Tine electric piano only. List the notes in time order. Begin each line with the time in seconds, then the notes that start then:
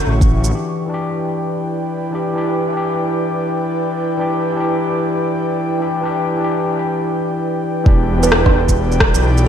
Already playing: D3 C#4 E4 F#4
0.51 E3 D4
0.55 G4
0.86 E3 D4
0.94 G4
2.11 E3 D4 G4
2.34 E3 D4
2.38 G4
2.69 E3
2.73 D4
2.77 G4
4.17 E3 D4
4.21 G4
4.52 E3
4.56 D4 G4
5.78 E3 D4 G4
6.01 E3 D4
6.05 G4
6.36 E3 D4
6.44 G4
7.84 E3 D4
7.88 G4
8.19 E3
8.23 D4 G4
9.44 E3